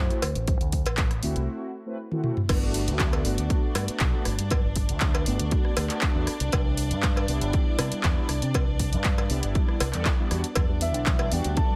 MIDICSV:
0, 0, Header, 1, 8, 480
1, 0, Start_track
1, 0, Key_signature, 1, "major"
1, 0, Tempo, 504202
1, 454, Time_signature, 4, 2, 24, 8
1, 11193, End_track
2, 0, Start_track
2, 0, Title_t, "Soft synth lead"
2, 0, Program_c, 0, 80
2, 0, Note_on_c, 0, 72, 103
2, 1415, Note_off_c, 0, 72, 0
2, 10302, Note_on_c, 0, 76, 111
2, 10783, Note_on_c, 0, 79, 104
2, 10797, Note_off_c, 0, 76, 0
2, 11013, Note_off_c, 0, 79, 0
2, 11019, Note_on_c, 0, 81, 114
2, 11193, Note_off_c, 0, 81, 0
2, 11193, End_track
3, 0, Start_track
3, 0, Title_t, "String section"
3, 0, Program_c, 1, 48
3, 2369, Note_on_c, 1, 74, 79
3, 2371, Note_on_c, 1, 62, 80
3, 10043, Note_off_c, 1, 74, 0
3, 10044, Note_off_c, 1, 62, 0
3, 10054, Note_on_c, 1, 74, 85
3, 10056, Note_on_c, 1, 62, 79
3, 11193, Note_off_c, 1, 62, 0
3, 11193, Note_off_c, 1, 74, 0
3, 11193, End_track
4, 0, Start_track
4, 0, Title_t, "Analog polysynth"
4, 0, Program_c, 2, 90
4, 91, Note_on_c, 2, 57, 92
4, 92, Note_on_c, 2, 60, 81
4, 96, Note_on_c, 2, 64, 85
4, 99, Note_on_c, 2, 66, 101
4, 195, Note_off_c, 2, 57, 0
4, 196, Note_off_c, 2, 60, 0
4, 198, Note_off_c, 2, 64, 0
4, 199, Note_off_c, 2, 66, 0
4, 1168, Note_on_c, 2, 57, 83
4, 1172, Note_on_c, 2, 60, 75
4, 1174, Note_on_c, 2, 64, 78
4, 1179, Note_on_c, 2, 66, 92
4, 1623, Note_off_c, 2, 57, 0
4, 1625, Note_off_c, 2, 60, 0
4, 1627, Note_off_c, 2, 64, 0
4, 1629, Note_off_c, 2, 66, 0
4, 1771, Note_on_c, 2, 57, 86
4, 1776, Note_on_c, 2, 60, 77
4, 1777, Note_on_c, 2, 64, 76
4, 1782, Note_on_c, 2, 71, 95
4, 1875, Note_off_c, 2, 57, 0
4, 1878, Note_off_c, 2, 60, 0
4, 1878, Note_off_c, 2, 64, 0
4, 1880, Note_off_c, 2, 71, 0
4, 2013, Note_on_c, 2, 57, 83
4, 2016, Note_on_c, 2, 60, 84
4, 2022, Note_on_c, 2, 64, 82
4, 2024, Note_on_c, 2, 66, 95
4, 2103, Note_off_c, 2, 57, 0
4, 2105, Note_off_c, 2, 60, 0
4, 2108, Note_off_c, 2, 64, 0
4, 2109, Note_off_c, 2, 66, 0
4, 2126, Note_on_c, 2, 57, 98
4, 2129, Note_on_c, 2, 60, 87
4, 2132, Note_on_c, 2, 64, 88
4, 2135, Note_on_c, 2, 66, 106
4, 2239, Note_off_c, 2, 57, 0
4, 2241, Note_off_c, 2, 60, 0
4, 2242, Note_off_c, 2, 64, 0
4, 2244, Note_off_c, 2, 66, 0
4, 2364, Note_on_c, 2, 57, 105
4, 2370, Note_on_c, 2, 59, 98
4, 2377, Note_on_c, 2, 62, 100
4, 2383, Note_on_c, 2, 66, 110
4, 3043, Note_off_c, 2, 57, 0
4, 3046, Note_off_c, 2, 59, 0
4, 3050, Note_off_c, 2, 62, 0
4, 3053, Note_off_c, 2, 66, 0
4, 3084, Note_on_c, 2, 57, 93
4, 3091, Note_on_c, 2, 59, 78
4, 3095, Note_on_c, 2, 62, 84
4, 3104, Note_on_c, 2, 66, 100
4, 3664, Note_off_c, 2, 57, 0
4, 3668, Note_off_c, 2, 59, 0
4, 3670, Note_off_c, 2, 62, 0
4, 3674, Note_off_c, 2, 66, 0
4, 3694, Note_on_c, 2, 57, 75
4, 3698, Note_on_c, 2, 59, 71
4, 3702, Note_on_c, 2, 62, 72
4, 3704, Note_on_c, 2, 66, 83
4, 3907, Note_off_c, 2, 57, 0
4, 3908, Note_off_c, 2, 59, 0
4, 3911, Note_off_c, 2, 62, 0
4, 3911, Note_off_c, 2, 66, 0
4, 3933, Note_on_c, 2, 57, 90
4, 3937, Note_on_c, 2, 59, 85
4, 3941, Note_on_c, 2, 62, 82
4, 3944, Note_on_c, 2, 66, 106
4, 4036, Note_off_c, 2, 57, 0
4, 4038, Note_off_c, 2, 59, 0
4, 4040, Note_off_c, 2, 62, 0
4, 4041, Note_off_c, 2, 66, 0
4, 5011, Note_on_c, 2, 57, 80
4, 5015, Note_on_c, 2, 59, 79
4, 5019, Note_on_c, 2, 62, 75
4, 5021, Note_on_c, 2, 66, 95
4, 5465, Note_off_c, 2, 57, 0
4, 5467, Note_off_c, 2, 59, 0
4, 5469, Note_off_c, 2, 62, 0
4, 5470, Note_off_c, 2, 66, 0
4, 5492, Note_on_c, 2, 57, 97
4, 5495, Note_on_c, 2, 59, 86
4, 5498, Note_on_c, 2, 62, 91
4, 5500, Note_on_c, 2, 67, 108
4, 5600, Note_off_c, 2, 57, 0
4, 5601, Note_off_c, 2, 59, 0
4, 5603, Note_off_c, 2, 62, 0
4, 5604, Note_off_c, 2, 67, 0
4, 5614, Note_on_c, 2, 57, 94
4, 5619, Note_on_c, 2, 59, 83
4, 5621, Note_on_c, 2, 62, 85
4, 5624, Note_on_c, 2, 66, 105
4, 5827, Note_off_c, 2, 57, 0
4, 5829, Note_off_c, 2, 59, 0
4, 5830, Note_off_c, 2, 62, 0
4, 5832, Note_off_c, 2, 66, 0
4, 5857, Note_on_c, 2, 57, 100
4, 5862, Note_on_c, 2, 59, 95
4, 5865, Note_on_c, 2, 62, 88
4, 5868, Note_on_c, 2, 66, 113
4, 5958, Note_off_c, 2, 57, 0
4, 5960, Note_off_c, 2, 59, 0
4, 5962, Note_off_c, 2, 62, 0
4, 5964, Note_off_c, 2, 66, 0
4, 6927, Note_on_c, 2, 55, 86
4, 6934, Note_on_c, 2, 59, 80
4, 6941, Note_on_c, 2, 62, 83
4, 6945, Note_on_c, 2, 64, 101
4, 7506, Note_off_c, 2, 55, 0
4, 7510, Note_off_c, 2, 59, 0
4, 7513, Note_off_c, 2, 62, 0
4, 7515, Note_off_c, 2, 64, 0
4, 7536, Note_on_c, 2, 55, 76
4, 7541, Note_on_c, 2, 59, 73
4, 7543, Note_on_c, 2, 62, 71
4, 7545, Note_on_c, 2, 64, 80
4, 7748, Note_off_c, 2, 55, 0
4, 7750, Note_off_c, 2, 59, 0
4, 7751, Note_off_c, 2, 62, 0
4, 7752, Note_off_c, 2, 64, 0
4, 7777, Note_on_c, 2, 55, 97
4, 7779, Note_on_c, 2, 59, 84
4, 7783, Note_on_c, 2, 62, 84
4, 7786, Note_on_c, 2, 64, 97
4, 7878, Note_off_c, 2, 55, 0
4, 7879, Note_off_c, 2, 59, 0
4, 7881, Note_off_c, 2, 62, 0
4, 7883, Note_off_c, 2, 64, 0
4, 8850, Note_on_c, 2, 55, 84
4, 8853, Note_on_c, 2, 59, 79
4, 8857, Note_on_c, 2, 62, 77
4, 8861, Note_on_c, 2, 64, 92
4, 9305, Note_off_c, 2, 55, 0
4, 9306, Note_off_c, 2, 59, 0
4, 9308, Note_off_c, 2, 62, 0
4, 9310, Note_off_c, 2, 64, 0
4, 9455, Note_on_c, 2, 55, 84
4, 9458, Note_on_c, 2, 59, 77
4, 9463, Note_on_c, 2, 62, 78
4, 9465, Note_on_c, 2, 69, 98
4, 9557, Note_off_c, 2, 55, 0
4, 9558, Note_off_c, 2, 59, 0
4, 9561, Note_off_c, 2, 62, 0
4, 9562, Note_off_c, 2, 69, 0
4, 9698, Note_on_c, 2, 55, 88
4, 9703, Note_on_c, 2, 59, 85
4, 9704, Note_on_c, 2, 62, 83
4, 9708, Note_on_c, 2, 64, 98
4, 9786, Note_off_c, 2, 55, 0
4, 9788, Note_off_c, 2, 59, 0
4, 9789, Note_off_c, 2, 62, 0
4, 9791, Note_off_c, 2, 64, 0
4, 9812, Note_on_c, 2, 55, 98
4, 9813, Note_on_c, 2, 59, 90
4, 9818, Note_on_c, 2, 62, 91
4, 9821, Note_on_c, 2, 66, 108
4, 9923, Note_off_c, 2, 55, 0
4, 9923, Note_off_c, 2, 59, 0
4, 9925, Note_off_c, 2, 62, 0
4, 9927, Note_off_c, 2, 66, 0
4, 10769, Note_on_c, 2, 55, 90
4, 10774, Note_on_c, 2, 59, 85
4, 10780, Note_on_c, 2, 62, 82
4, 10787, Note_on_c, 2, 66, 102
4, 11193, Note_off_c, 2, 55, 0
4, 11193, Note_off_c, 2, 59, 0
4, 11193, Note_off_c, 2, 62, 0
4, 11193, Note_off_c, 2, 66, 0
4, 11193, End_track
5, 0, Start_track
5, 0, Title_t, "Synth arpeggio sound"
5, 0, Program_c, 3, 84
5, 10053, Note_on_c, 3, 52, 84
5, 10172, Note_off_c, 3, 52, 0
5, 10178, Note_on_c, 3, 55, 93
5, 10251, Note_off_c, 3, 55, 0
5, 10292, Note_on_c, 3, 59, 102
5, 10412, Note_off_c, 3, 59, 0
5, 10417, Note_on_c, 3, 62, 104
5, 10491, Note_off_c, 3, 62, 0
5, 10531, Note_on_c, 3, 52, 83
5, 10652, Note_off_c, 3, 52, 0
5, 10656, Note_on_c, 3, 55, 77
5, 10766, Note_off_c, 3, 55, 0
5, 10771, Note_on_c, 3, 59, 78
5, 10852, Note_off_c, 3, 59, 0
5, 10898, Note_on_c, 3, 62, 81
5, 10942, Note_off_c, 3, 62, 0
5, 11011, Note_on_c, 3, 62, 105
5, 11092, Note_off_c, 3, 62, 0
5, 11138, Note_on_c, 3, 55, 100
5, 11193, Note_off_c, 3, 55, 0
5, 11193, End_track
6, 0, Start_track
6, 0, Title_t, "Fingered electric bass"
6, 0, Program_c, 4, 33
6, 213, Note_on_c, 4, 38, 73
6, 320, Note_off_c, 4, 38, 0
6, 337, Note_on_c, 4, 33, 94
6, 539, Note_off_c, 4, 33, 0
6, 577, Note_on_c, 4, 38, 94
6, 817, Note_off_c, 4, 38, 0
6, 817, Note_on_c, 4, 33, 92
6, 1144, Note_off_c, 4, 33, 0
6, 1171, Note_on_c, 4, 38, 89
6, 1279, Note_off_c, 4, 38, 0
6, 1295, Note_on_c, 4, 36, 94
6, 1394, Note_off_c, 4, 36, 0
6, 2373, Note_on_c, 4, 31, 100
6, 2739, Note_on_c, 4, 38, 92
6, 2753, Note_off_c, 4, 31, 0
6, 3065, Note_off_c, 4, 38, 0
6, 3091, Note_on_c, 4, 31, 88
6, 3199, Note_off_c, 4, 31, 0
6, 3215, Note_on_c, 4, 38, 97
6, 3314, Note_off_c, 4, 38, 0
6, 3570, Note_on_c, 4, 43, 89
6, 3678, Note_off_c, 4, 43, 0
6, 3814, Note_on_c, 4, 35, 85
6, 3920, Note_off_c, 4, 35, 0
6, 4053, Note_on_c, 4, 31, 75
6, 4159, Note_off_c, 4, 31, 0
6, 4179, Note_on_c, 4, 43, 91
6, 4380, Note_off_c, 4, 43, 0
6, 4417, Note_on_c, 4, 31, 88
6, 4659, Note_on_c, 4, 38, 92
6, 4673, Note_off_c, 4, 31, 0
6, 4985, Note_off_c, 4, 38, 0
6, 5015, Note_on_c, 4, 31, 95
6, 5121, Note_off_c, 4, 31, 0
6, 5143, Note_on_c, 4, 38, 100
6, 5238, Note_off_c, 4, 38, 0
6, 5496, Note_on_c, 4, 38, 85
6, 5601, Note_off_c, 4, 38, 0
6, 5859, Note_on_c, 4, 40, 82
6, 5956, Note_off_c, 4, 40, 0
6, 6097, Note_on_c, 4, 36, 88
6, 6195, Note_off_c, 4, 36, 0
6, 6216, Note_on_c, 4, 36, 100
6, 6577, Note_on_c, 4, 43, 92
6, 6591, Note_off_c, 4, 36, 0
6, 6904, Note_off_c, 4, 43, 0
6, 6932, Note_on_c, 4, 36, 94
6, 7039, Note_off_c, 4, 36, 0
6, 7055, Note_on_c, 4, 31, 103
6, 7154, Note_off_c, 4, 31, 0
6, 7413, Note_on_c, 4, 48, 91
6, 7520, Note_off_c, 4, 48, 0
6, 7657, Note_on_c, 4, 40, 87
6, 7761, Note_off_c, 4, 40, 0
6, 7894, Note_on_c, 4, 36, 76
6, 8000, Note_off_c, 4, 36, 0
6, 8020, Note_on_c, 4, 48, 92
6, 8221, Note_off_c, 4, 48, 0
6, 8259, Note_on_c, 4, 36, 91
6, 8502, Note_on_c, 4, 43, 91
6, 8516, Note_off_c, 4, 36, 0
6, 8827, Note_off_c, 4, 43, 0
6, 8855, Note_on_c, 4, 36, 95
6, 8961, Note_off_c, 4, 36, 0
6, 8982, Note_on_c, 4, 31, 101
6, 9077, Note_off_c, 4, 31, 0
6, 9337, Note_on_c, 4, 36, 93
6, 9442, Note_off_c, 4, 36, 0
6, 9463, Note_on_c, 4, 40, 85
6, 9558, Note_off_c, 4, 40, 0
6, 9817, Note_on_c, 4, 40, 83
6, 9922, Note_off_c, 4, 40, 0
6, 10055, Note_on_c, 4, 40, 100
6, 10421, Note_off_c, 4, 40, 0
6, 10421, Note_on_c, 4, 35, 93
6, 10746, Note_off_c, 4, 35, 0
6, 10778, Note_on_c, 4, 40, 92
6, 10882, Note_off_c, 4, 40, 0
6, 10902, Note_on_c, 4, 38, 97
6, 10998, Note_off_c, 4, 38, 0
6, 11193, End_track
7, 0, Start_track
7, 0, Title_t, "Muted fingered electric bass strokes"
7, 3699, Note_on_c, 9, 29, 46
7, 3794, Note_off_c, 9, 29, 0
7, 5974, Note_on_c, 9, 29, 42
7, 6069, Note_off_c, 9, 29, 0
7, 7540, Note_on_c, 9, 29, 44
7, 7636, Note_off_c, 9, 29, 0
7, 11193, End_track
8, 0, Start_track
8, 0, Title_t, "Drums"
8, 99, Note_on_c, 9, 42, 41
8, 195, Note_off_c, 9, 42, 0
8, 213, Note_on_c, 9, 56, 85
8, 214, Note_on_c, 9, 46, 97
8, 308, Note_off_c, 9, 56, 0
8, 309, Note_off_c, 9, 46, 0
8, 337, Note_on_c, 9, 42, 39
8, 433, Note_off_c, 9, 42, 0
8, 452, Note_on_c, 9, 42, 74
8, 454, Note_on_c, 9, 36, 118
8, 548, Note_off_c, 9, 42, 0
8, 549, Note_off_c, 9, 36, 0
8, 579, Note_on_c, 9, 42, 41
8, 675, Note_off_c, 9, 42, 0
8, 690, Note_on_c, 9, 46, 105
8, 694, Note_on_c, 9, 36, 56
8, 785, Note_off_c, 9, 46, 0
8, 789, Note_off_c, 9, 36, 0
8, 815, Note_on_c, 9, 42, 41
8, 823, Note_on_c, 9, 56, 81
8, 911, Note_off_c, 9, 42, 0
8, 918, Note_off_c, 9, 56, 0
8, 925, Note_on_c, 9, 39, 117
8, 930, Note_on_c, 9, 42, 68
8, 933, Note_on_c, 9, 36, 114
8, 1020, Note_off_c, 9, 39, 0
8, 1025, Note_off_c, 9, 42, 0
8, 1029, Note_off_c, 9, 36, 0
8, 1055, Note_on_c, 9, 37, 59
8, 1055, Note_on_c, 9, 42, 39
8, 1150, Note_off_c, 9, 37, 0
8, 1150, Note_off_c, 9, 42, 0
8, 1167, Note_on_c, 9, 46, 96
8, 1263, Note_off_c, 9, 46, 0
8, 1293, Note_on_c, 9, 42, 39
8, 1388, Note_off_c, 9, 42, 0
8, 2014, Note_on_c, 9, 48, 52
8, 2109, Note_off_c, 9, 48, 0
8, 2129, Note_on_c, 9, 47, 73
8, 2224, Note_off_c, 9, 47, 0
8, 2256, Note_on_c, 9, 45, 74
8, 2351, Note_off_c, 9, 45, 0
8, 2372, Note_on_c, 9, 42, 55
8, 2372, Note_on_c, 9, 49, 107
8, 2372, Note_on_c, 9, 56, 84
8, 2373, Note_on_c, 9, 36, 113
8, 2467, Note_off_c, 9, 42, 0
8, 2467, Note_off_c, 9, 49, 0
8, 2468, Note_off_c, 9, 36, 0
8, 2468, Note_off_c, 9, 56, 0
8, 2611, Note_on_c, 9, 46, 112
8, 2706, Note_off_c, 9, 46, 0
8, 2740, Note_on_c, 9, 42, 66
8, 2835, Note_off_c, 9, 42, 0
8, 2848, Note_on_c, 9, 39, 122
8, 2853, Note_on_c, 9, 42, 56
8, 2854, Note_on_c, 9, 36, 121
8, 2943, Note_off_c, 9, 39, 0
8, 2948, Note_off_c, 9, 42, 0
8, 2949, Note_off_c, 9, 36, 0
8, 2977, Note_on_c, 9, 37, 59
8, 2981, Note_on_c, 9, 56, 62
8, 3072, Note_off_c, 9, 37, 0
8, 3076, Note_off_c, 9, 56, 0
8, 3093, Note_on_c, 9, 46, 100
8, 3188, Note_off_c, 9, 46, 0
8, 3218, Note_on_c, 9, 42, 64
8, 3313, Note_off_c, 9, 42, 0
8, 3333, Note_on_c, 9, 36, 117
8, 3333, Note_on_c, 9, 42, 54
8, 3428, Note_off_c, 9, 42, 0
8, 3429, Note_off_c, 9, 36, 0
8, 3571, Note_on_c, 9, 37, 81
8, 3571, Note_on_c, 9, 46, 105
8, 3574, Note_on_c, 9, 56, 94
8, 3666, Note_off_c, 9, 37, 0
8, 3666, Note_off_c, 9, 46, 0
8, 3669, Note_off_c, 9, 56, 0
8, 3695, Note_on_c, 9, 42, 74
8, 3791, Note_off_c, 9, 42, 0
8, 3804, Note_on_c, 9, 39, 123
8, 3809, Note_on_c, 9, 42, 55
8, 3814, Note_on_c, 9, 36, 121
8, 3899, Note_off_c, 9, 39, 0
8, 3904, Note_off_c, 9, 42, 0
8, 3909, Note_off_c, 9, 36, 0
8, 4049, Note_on_c, 9, 37, 81
8, 4049, Note_on_c, 9, 46, 103
8, 4145, Note_off_c, 9, 37, 0
8, 4145, Note_off_c, 9, 46, 0
8, 4176, Note_on_c, 9, 42, 69
8, 4271, Note_off_c, 9, 42, 0
8, 4289, Note_on_c, 9, 42, 57
8, 4294, Note_on_c, 9, 36, 121
8, 4299, Note_on_c, 9, 56, 84
8, 4384, Note_off_c, 9, 42, 0
8, 4390, Note_off_c, 9, 36, 0
8, 4394, Note_off_c, 9, 56, 0
8, 4527, Note_on_c, 9, 46, 107
8, 4534, Note_on_c, 9, 36, 63
8, 4622, Note_off_c, 9, 46, 0
8, 4629, Note_off_c, 9, 36, 0
8, 4654, Note_on_c, 9, 42, 68
8, 4749, Note_off_c, 9, 42, 0
8, 4762, Note_on_c, 9, 39, 126
8, 4767, Note_on_c, 9, 42, 54
8, 4774, Note_on_c, 9, 36, 124
8, 4857, Note_off_c, 9, 39, 0
8, 4862, Note_off_c, 9, 42, 0
8, 4869, Note_off_c, 9, 36, 0
8, 4894, Note_on_c, 9, 37, 58
8, 4900, Note_on_c, 9, 56, 72
8, 4989, Note_off_c, 9, 37, 0
8, 4995, Note_off_c, 9, 56, 0
8, 5009, Note_on_c, 9, 46, 106
8, 5104, Note_off_c, 9, 46, 0
8, 5136, Note_on_c, 9, 42, 65
8, 5231, Note_off_c, 9, 42, 0
8, 5249, Note_on_c, 9, 42, 54
8, 5255, Note_on_c, 9, 36, 122
8, 5344, Note_off_c, 9, 42, 0
8, 5350, Note_off_c, 9, 36, 0
8, 5376, Note_on_c, 9, 37, 60
8, 5471, Note_off_c, 9, 37, 0
8, 5490, Note_on_c, 9, 46, 108
8, 5490, Note_on_c, 9, 56, 103
8, 5585, Note_off_c, 9, 46, 0
8, 5585, Note_off_c, 9, 56, 0
8, 5612, Note_on_c, 9, 39, 39
8, 5617, Note_on_c, 9, 42, 72
8, 5707, Note_off_c, 9, 39, 0
8, 5712, Note_off_c, 9, 42, 0
8, 5723, Note_on_c, 9, 39, 127
8, 5728, Note_on_c, 9, 42, 54
8, 5735, Note_on_c, 9, 36, 118
8, 5818, Note_off_c, 9, 39, 0
8, 5823, Note_off_c, 9, 42, 0
8, 5831, Note_off_c, 9, 36, 0
8, 5970, Note_on_c, 9, 37, 80
8, 5970, Note_on_c, 9, 46, 102
8, 6065, Note_off_c, 9, 37, 0
8, 6065, Note_off_c, 9, 46, 0
8, 6095, Note_on_c, 9, 42, 65
8, 6190, Note_off_c, 9, 42, 0
8, 6211, Note_on_c, 9, 42, 55
8, 6216, Note_on_c, 9, 36, 122
8, 6216, Note_on_c, 9, 56, 107
8, 6306, Note_off_c, 9, 42, 0
8, 6311, Note_off_c, 9, 36, 0
8, 6311, Note_off_c, 9, 56, 0
8, 6449, Note_on_c, 9, 46, 112
8, 6545, Note_off_c, 9, 46, 0
8, 6578, Note_on_c, 9, 42, 64
8, 6673, Note_off_c, 9, 42, 0
8, 6688, Note_on_c, 9, 39, 121
8, 6694, Note_on_c, 9, 42, 53
8, 6696, Note_on_c, 9, 36, 127
8, 6784, Note_off_c, 9, 39, 0
8, 6789, Note_off_c, 9, 42, 0
8, 6791, Note_off_c, 9, 36, 0
8, 6819, Note_on_c, 9, 37, 57
8, 6827, Note_on_c, 9, 56, 71
8, 6914, Note_off_c, 9, 37, 0
8, 6922, Note_off_c, 9, 56, 0
8, 6934, Note_on_c, 9, 46, 106
8, 7029, Note_off_c, 9, 46, 0
8, 7059, Note_on_c, 9, 42, 61
8, 7154, Note_off_c, 9, 42, 0
8, 7172, Note_on_c, 9, 42, 52
8, 7176, Note_on_c, 9, 36, 126
8, 7267, Note_off_c, 9, 42, 0
8, 7271, Note_off_c, 9, 36, 0
8, 7412, Note_on_c, 9, 37, 81
8, 7412, Note_on_c, 9, 46, 115
8, 7413, Note_on_c, 9, 56, 88
8, 7507, Note_off_c, 9, 37, 0
8, 7507, Note_off_c, 9, 46, 0
8, 7508, Note_off_c, 9, 56, 0
8, 7537, Note_on_c, 9, 42, 69
8, 7632, Note_off_c, 9, 42, 0
8, 7648, Note_on_c, 9, 39, 123
8, 7653, Note_on_c, 9, 42, 49
8, 7656, Note_on_c, 9, 36, 127
8, 7743, Note_off_c, 9, 39, 0
8, 7748, Note_off_c, 9, 42, 0
8, 7751, Note_off_c, 9, 36, 0
8, 7891, Note_on_c, 9, 37, 77
8, 7891, Note_on_c, 9, 46, 112
8, 7986, Note_off_c, 9, 37, 0
8, 7986, Note_off_c, 9, 46, 0
8, 8017, Note_on_c, 9, 42, 65
8, 8113, Note_off_c, 9, 42, 0
8, 8134, Note_on_c, 9, 42, 53
8, 8136, Note_on_c, 9, 36, 125
8, 8140, Note_on_c, 9, 56, 99
8, 8229, Note_off_c, 9, 42, 0
8, 8231, Note_off_c, 9, 36, 0
8, 8235, Note_off_c, 9, 56, 0
8, 8372, Note_on_c, 9, 46, 113
8, 8375, Note_on_c, 9, 36, 63
8, 8468, Note_off_c, 9, 46, 0
8, 8471, Note_off_c, 9, 36, 0
8, 8498, Note_on_c, 9, 42, 62
8, 8593, Note_off_c, 9, 42, 0
8, 8605, Note_on_c, 9, 39, 117
8, 8611, Note_on_c, 9, 42, 51
8, 8615, Note_on_c, 9, 36, 126
8, 8701, Note_off_c, 9, 39, 0
8, 8706, Note_off_c, 9, 42, 0
8, 8710, Note_off_c, 9, 36, 0
8, 8739, Note_on_c, 9, 37, 58
8, 8742, Note_on_c, 9, 56, 69
8, 8834, Note_off_c, 9, 37, 0
8, 8838, Note_off_c, 9, 56, 0
8, 8851, Note_on_c, 9, 46, 105
8, 8946, Note_off_c, 9, 46, 0
8, 8976, Note_on_c, 9, 42, 62
8, 9072, Note_off_c, 9, 42, 0
8, 9093, Note_on_c, 9, 42, 53
8, 9095, Note_on_c, 9, 36, 122
8, 9188, Note_off_c, 9, 42, 0
8, 9190, Note_off_c, 9, 36, 0
8, 9220, Note_on_c, 9, 37, 63
8, 9315, Note_off_c, 9, 37, 0
8, 9333, Note_on_c, 9, 46, 111
8, 9334, Note_on_c, 9, 56, 103
8, 9429, Note_off_c, 9, 46, 0
8, 9430, Note_off_c, 9, 56, 0
8, 9453, Note_on_c, 9, 39, 37
8, 9458, Note_on_c, 9, 42, 66
8, 9548, Note_off_c, 9, 39, 0
8, 9554, Note_off_c, 9, 42, 0
8, 9568, Note_on_c, 9, 39, 117
8, 9573, Note_on_c, 9, 42, 53
8, 9575, Note_on_c, 9, 36, 127
8, 9663, Note_off_c, 9, 39, 0
8, 9669, Note_off_c, 9, 42, 0
8, 9670, Note_off_c, 9, 36, 0
8, 9815, Note_on_c, 9, 37, 78
8, 9815, Note_on_c, 9, 46, 103
8, 9910, Note_off_c, 9, 37, 0
8, 9910, Note_off_c, 9, 46, 0
8, 9938, Note_on_c, 9, 42, 65
8, 10033, Note_off_c, 9, 42, 0
8, 10048, Note_on_c, 9, 56, 95
8, 10053, Note_on_c, 9, 42, 55
8, 10055, Note_on_c, 9, 36, 123
8, 10143, Note_off_c, 9, 56, 0
8, 10148, Note_off_c, 9, 42, 0
8, 10151, Note_off_c, 9, 36, 0
8, 10291, Note_on_c, 9, 46, 111
8, 10386, Note_off_c, 9, 46, 0
8, 10419, Note_on_c, 9, 42, 61
8, 10514, Note_off_c, 9, 42, 0
8, 10529, Note_on_c, 9, 39, 116
8, 10534, Note_on_c, 9, 42, 51
8, 10536, Note_on_c, 9, 36, 121
8, 10624, Note_off_c, 9, 39, 0
8, 10629, Note_off_c, 9, 42, 0
8, 10631, Note_off_c, 9, 36, 0
8, 10654, Note_on_c, 9, 56, 65
8, 10659, Note_on_c, 9, 37, 64
8, 10749, Note_off_c, 9, 56, 0
8, 10754, Note_off_c, 9, 37, 0
8, 10772, Note_on_c, 9, 46, 105
8, 10867, Note_off_c, 9, 46, 0
8, 10895, Note_on_c, 9, 42, 59
8, 10991, Note_off_c, 9, 42, 0
8, 11012, Note_on_c, 9, 42, 51
8, 11016, Note_on_c, 9, 36, 122
8, 11107, Note_off_c, 9, 42, 0
8, 11112, Note_off_c, 9, 36, 0
8, 11193, End_track
0, 0, End_of_file